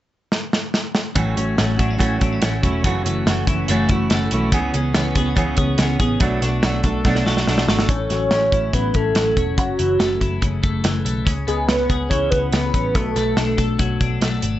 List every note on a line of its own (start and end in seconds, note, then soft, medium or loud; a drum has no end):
0.32 snare medium
0.53 snare medium
0.74 snare medium
0.95 snare medium
1.15 1.33 A1 medium
1.15 1.37 A2 medium
1.15 2.84 A2 medium
1.15 1.37 E3 medium
1.15 1.37 F#3 medium
1.15 1.36 A3 medium
1.15 1.36 C#4 medium
1.15 1.35 F#4 medium
1.15 kick loud
1.15 closed hi-hat medium
1.36 1.55 A1 medium
1.36 1.56 F#3 soft
1.36 1.57 A3 soft
1.36 1.57 C#4 medium
1.36 2.01 C#4 medium
1.36 1.58 F#4 medium
1.36 closed hi-hat medium
1.57 1.76 A1 medium
1.57 1.79 F#3 medium
1.57 2.89 F#3 medium
1.57 1.78 A3 medium
1.57 1.78 C#4 medium
1.57 1.76 F#4 medium
1.57 snare medium
1.57 closed hi-hat medium
1.78 1.96 A1 medium
1.78 1.98 F#3 soft
1.78 1.98 A3 soft
1.78 1.98 C#4 medium
1.78 1.90 D4 medium
1.78 1.98 F#4 soft
1.78 kick medium
1.78 closed hi-hat medium
1.90 2.21 E4 medium
1.98 2.20 A2 medium
1.98 2.20 E3 medium
1.98 2.20 F#3 medium
1.98 2.19 A3 medium
1.98 2.18 C#4 medium
1.98 2.42 C#4 medium
1.98 2.18 F#4 medium
1.98 kick medium
1.98 closed hi-hat medium
2.19 2.39 A1 medium
2.19 2.40 F#3 soft
2.19 2.41 A3 soft
2.19 2.41 C#4 soft
2.19 2.33 D4 medium
2.19 2.41 F#4 soft
2.19 kick medium
2.19 closed hi-hat medium
2.33 2.63 E4 medium
2.41 2.60 A1 medium
2.41 2.63 F#3 medium
2.41 2.63 A3 medium
2.41 2.63 C#4 medium
2.41 3.06 C#4 medium
2.41 2.61 F#4 medium
2.41 snare medium
2.41 closed hi-hat medium
2.63 2.81 E1 medium
2.63 2.84 F#3 soft
2.63 2.84 A3 soft
2.63 2.84 C#4 medium
2.63 3.47 E4 medium
2.63 2.84 F#4 medium
2.63 kick medium
2.63 closed hi-hat medium
2.84 3.01 F#1 medium
2.84 4.52 F#2 medium
2.84 3.05 F#2 medium
2.84 3.05 C#3 medium
2.84 3.04 E3 medium
2.84 3.04 A3 medium
2.84 3.03 C#4 medium
2.84 3.03 F#4 medium
2.84 kick loud
2.84 closed hi-hat medium
3.04 3.22 F#1 medium
3.04 3.25 E3 soft
3.04 3.26 A3 soft
3.04 3.68 A3 medium
3.04 3.26 C#4 soft
3.04 3.26 F#4 medium
3.04 closed hi-hat medium
3.26 3.43 F#1 medium
3.26 3.48 E3 medium
3.26 4.57 E3 medium
3.26 3.48 A3 medium
3.26 3.47 C#4 medium
3.26 3.46 F#4 medium
3.26 snare medium
3.26 closed hi-hat medium
3.47 3.64 F#1 medium
3.47 3.69 E3 soft
3.47 3.69 A3 soft
3.47 3.69 C#4 soft
3.47 3.89 E4 medium
3.47 3.69 F#4 medium
3.47 kick medium
3.47 closed hi-hat medium
3.68 3.86 F#1 loud
3.68 3.90 F#2 medium
3.68 3.90 C#3 medium
3.68 3.90 E3 medium
3.68 4.09 A3 medium
3.68 3.90 A3 medium
3.68 3.90 C#4 medium
3.68 3.90 F#4 medium
3.68 closed hi-hat medium
3.89 4.07 F#1 medium
3.89 4.10 A3 soft
3.89 4.11 C#4 soft
3.89 4.30 E4 medium
3.89 4.11 F#4 medium
3.89 kick medium
3.89 closed hi-hat medium
3.93 4.10 E3 soft
4.10 4.28 F#1 medium
4.10 4.32 E3 medium
4.10 4.57 A3 medium
4.10 4.32 A3 medium
4.10 4.32 C#4 medium
4.10 4.31 F#4 medium
4.10 snare medium
4.10 closed hi-hat medium
4.31 4.52 B1 medium
4.31 4.51 E3 soft
4.31 4.53 A3 medium
4.31 4.52 C#4 medium
4.31 4.57 E4 medium
4.31 4.53 F#4 medium
4.31 closed hi-hat medium
4.52 4.69 C#2 medium
4.52 6.20 C#3 medium
4.52 4.73 C#3 medium
4.52 4.73 E3 medium
4.52 4.74 B3 medium
4.52 4.73 C#4 medium
4.52 4.73 G#4 medium
4.52 kick loud
4.52 closed hi-hat medium
4.73 4.91 C#2 medium
4.73 4.94 B3 soft
4.73 5.35 C#4 medium
4.73 4.94 C#4 medium
4.73 4.95 G#4 medium
4.73 closed hi-hat medium
4.93 5.12 C#2 loud
4.93 5.15 E3 medium
4.93 6.25 B3 medium
4.93 5.16 B3 medium
4.93 5.16 C#4 medium
4.93 5.15 G#4 medium
4.93 snare medium
4.93 closed hi-hat medium
5.15 5.33 C#2 medium
5.15 5.35 B3 soft
5.15 5.36 C#4 soft
5.15 5.26 F#4 medium
5.15 5.36 G#4 soft
5.15 kick medium
5.15 closed hi-hat medium
5.26 5.56 G#4 medium
5.36 5.54 C#2 medium
5.36 5.57 C#3 medium
5.36 5.57 E3 medium
5.36 5.58 B3 medium
5.36 5.77 C#4 medium
5.36 5.57 C#4 medium
5.36 5.56 G#4 medium
5.36 kick medium
5.36 closed hi-hat medium
5.57 5.75 C#2 medium
5.57 5.79 B3 soft
5.57 5.79 C#4 soft
5.57 5.99 G#4 medium
5.57 5.79 G#4 soft
5.57 kick medium
5.57 closed hi-hat medium
5.78 5.96 C#2 medium
5.78 6.00 E3 medium
5.78 6.00 B3 medium
5.78 6.25 C#4 medium
5.78 5.99 C#4 medium
5.78 5.98 G#4 medium
5.78 snare medium
5.78 closed hi-hat medium
5.99 6.17 A1 medium
5.99 6.21 B3 soft
5.99 6.21 C#4 medium
5.99 6.21 G#4 medium
5.99 6.25 G#4 medium
5.99 kick medium
5.99 closed hi-hat medium
6.20 6.38 B1 medium
6.20 6.41 B2 medium
6.20 7.89 B2 medium
6.20 6.42 F#3 medium
6.20 6.42 A3 medium
6.20 6.41 D4 medium
6.20 6.40 F#4 medium
6.20 kick loud
6.20 closed hi-hat medium
6.41 6.59 B1 medium
6.41 6.63 A3 soft
6.41 7.05 D4 medium
6.41 6.63 D4 soft
6.41 6.63 F#4 soft
6.41 snare soft
6.41 closed hi-hat medium
6.62 6.80 B1 medium
6.62 6.84 F#3 medium
6.62 8.31 A3 medium
6.62 6.84 A3 medium
6.62 6.83 D4 medium
6.62 6.82 F#4 medium
6.62 snare loud
6.62 closed hi-hat medium
6.83 7.01 B1 medium
6.83 7.04 A3 soft
6.83 7.05 D4 soft
6.83 7.05 F#4 soft
6.83 7.26 A4 medium
6.83 kick medium
6.83 closed hi-hat medium
7.04 7.22 B1 medium
7.04 7.26 B2 medium
7.04 7.26 F#3 medium
7.04 7.26 A3 medium
7.04 7.25 D4 medium
7.04 7.46 D4 medium
7.04 7.24 F#4 medium
7.04 kick medium
7.04 snare medium
7.15 snare soft
7.26 7.44 B1 medium
7.26 7.47 A3 soft
7.26 7.47 D4 soft
7.26 7.47 F#4 medium
7.26 7.68 A4 medium
7.26 snare medium
7.37 snare medium
7.47 7.65 B1 medium
7.47 7.68 F#3 medium
7.47 7.68 A3 medium
7.47 7.93 D4 medium
7.47 7.67 D4 medium
7.47 7.67 F#4 medium
7.47 snare medium
7.58 snare medium
7.68 7.85 G#1 medium
7.68 7.90 A3 soft
7.68 7.89 D4 medium
7.68 7.89 F#4 medium
7.68 11.18 A4 medium
7.68 snare medium
7.79 snare medium
7.89 8.06 A1 medium
7.89 9.57 A2 medium
7.89 8.75 C#5 loud
7.89 kick loud
7.89 closed hi-hat medium
8.09 8.28 A1 medium
8.09 8.73 F#3 soft
8.09 snare soft
8.09 closed hi-hat medium
8.31 8.49 A1 medium
8.31 8.95 C#4 medium
8.31 snare medium
8.31 closed hi-hat medium
8.52 8.70 A1 medium
8.52 10.20 E4 medium
8.52 kick medium
8.52 closed hi-hat medium
8.73 8.91 A1 medium
8.73 9.16 F#3 medium
8.73 8.97 B4 loud
8.73 kick medium
8.73 closed hi-hat medium
8.94 9.12 A1 medium
8.94 9.37 C#4 soft
8.94 9.57 A4 medium
8.94 kick medium
8.94 closed hi-hat medium
9.15 9.33 A1 medium
9.15 9.62 F#3 soft
9.15 snare medium
9.15 closed hi-hat medium
9.37 9.58 E1 medium
9.37 9.99 C#4 medium
9.37 kick medium
9.37 closed hi-hat medium
9.58 9.75 F#1 medium
9.58 11.26 F#2 medium
9.58 10.38 F#4 medium
9.58 kick medium
9.58 closed hi-hat medium
9.79 9.97 F#1 medium
9.79 10.84 E3 soft
9.79 closed hi-hat medium
9.99 10.17 F#1 medium
9.99 10.62 A3 medium
9.99 snare medium
9.99 closed hi-hat medium
10.21 10.38 F#1 medium
10.21 11.31 E4 medium
10.21 kick medium
10.21 closed hi-hat medium
10.41 10.59 F#1 medium
10.41 11.24 C#3 medium
10.41 kick medium
10.41 closed hi-hat medium
10.63 10.81 F#1 medium
10.63 11.04 A3 medium
10.63 kick medium
10.63 closed hi-hat medium
10.84 11.02 F#1 medium
10.84 11.31 E3 medium
10.84 snare medium
10.84 closed hi-hat medium
11.05 11.23 B1 medium
11.05 11.31 A3 medium
11.05 closed hi-hat medium
11.25 11.44 C#2 medium
11.25 12.94 C#3 medium
11.25 kick loud
11.25 closed hi-hat medium
11.47 11.65 C#2 medium
11.47 12.52 B3 soft
11.47 11.69 G#4 medium
11.47 closed hi-hat medium
11.67 11.86 C#2 medium
11.67 12.31 C#4 medium
11.67 12.09 B4 medium
11.67 snare medium
11.67 closed hi-hat medium
11.90 12.07 C#2 medium
11.90 12.99 G#4 medium
11.90 kick medium
11.90 closed hi-hat medium
12.10 12.28 C#2 medium
12.10 12.99 E3 medium
12.10 12.32 C#5 loud
12.10 kick medium
12.10 closed hi-hat medium
12.31 12.49 C#2 medium
12.31 12.73 C#4 medium
12.31 12.97 B4 loud
12.31 kick medium
12.31 closed hi-hat medium
12.52 12.70 C#2 medium
12.52 12.99 B3 medium
12.52 snare medium
12.52 closed hi-hat medium
12.74 12.95 A1 medium
12.74 12.99 C#4 medium
12.74 kick medium
12.74 closed hi-hat medium
12.95 13.12 B1 medium
12.95 14.59 B2 medium
12.95 14.22 A4 medium
12.95 kick loud
12.95 closed hi-hat medium
13.16 13.33 B1 medium
13.16 14.21 A3 soft
13.16 snare soft
13.16 closed hi-hat medium
13.37 13.54 B1 medium
13.37 13.99 D4 medium
13.37 snare medium
13.37 closed hi-hat medium
13.57 13.75 B1 medium
13.57 14.59 A4 medium
13.57 kick medium
13.57 closed hi-hat medium
13.79 13.97 B1 medium
13.79 14.59 F#3 medium
13.79 kick medium
13.79 closed hi-hat medium
14.01 14.18 B1 medium
14.01 14.41 D4 soft
14.01 kick medium
14.01 closed hi-hat medium
14.21 14.38 B1 medium
14.21 14.59 A3 soft
14.21 snare medium
14.21 closed hi-hat medium
14.42 14.59 G#1 medium
14.42 14.59 D4 medium
14.42 closed hi-hat medium